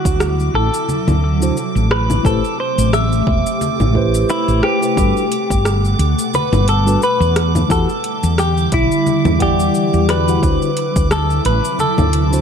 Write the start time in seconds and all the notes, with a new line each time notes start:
Already playing: C3 F#3 E4 F#4 D6
0.05 D2, kick, shaker
0.20 cross-stick, shaker
0.40 shaker
0.54 A1 A4
0.74 shaker
0.89 high conga, shaker
1.07 D2, low conga, shaker
1.40 D3 D4 E4 F#4 C5, shaker
1.57 shaker
1.75 A1, shaker
1.91 A3 G4 B4, cross-stick
2.10 low conga, shaker
2.23 A1 A3 E4 G4 A4 B4 C5, kick, shaker
2.44 shaker
2.60 C5
2.78 A1, shaker
2.93 E5, cross-stick, shaker
3.12 shaker
3.27 E1, kick
3.46 shaker
3.61 high conga, shaker
3.80 A1, low conga, shaker
3.93 A3 E4 G4 B4 C5, kick
4.14 shaker
4.29 E4, shaker
4.48 A1, shaker
4.62 A3 E4 G4 B4 C5, cross-stick
4.81 A3 E4 G4 B4 C5, shaker
4.96 G1 B2 G3 D4 F#4 A4 B4 F#5, kick, shaker
5.17 shaker
5.32 closed hi-hat
5.50 G1, kick, shaker
5.65 cross-stick, shaker
5.85 shaker
5.99 D2, closed hi-hat
6.19 shaker
6.34 B4, high conga, shaker
6.52 G1, low conga, shaker
6.68 A4, closed hi-hat
6.85 G3 D4 F#4 A4 B4, shaker
7.02 B4, shaker
7.20 E2, shaker
7.36 D3 G3 E4, cross-stick, closed hi-hat
7.55 low conga, shaker
7.68 E2 E3 E4 F#4 G4 A4 F#5, kick, shaker
7.89 shaker
8.04 closed hi-hat
8.23 E2, shaker
8.38 G4, cross-stick, shaker
8.58 shaker
8.72 B1 E4, kick, closed hi-hat
8.92 shaker
9.07 high conga, shaker
9.25 E2, low conga, shaker
9.39 E3 E4 G4 D5 F#5, kick, closed hi-hat
9.60 shaker
9.75 shaker
9.94 E2, shaker
10.07 E3 E4 F#4 G4 B4 D5, cross-stick, closed hi-hat
10.26 E3 E4 F#4 G4 F#5, shaker
10.41 D2 C3 D3 F#3 D4 E4 F#4 C5, kick, shaker
10.62 shaker
10.77 closed hi-hat
10.96 D2, kick, shaker
11.11 A4, cross-stick, shaker
11.30 shaker
11.45 A1 B4, closed hi-hat
11.65 shaker
11.79 A4, high conga, shaker
11.98 D2, low conga, shaker
12.13 closed hi-hat
12.30 D3 D4 E4 F#4 C5, shaker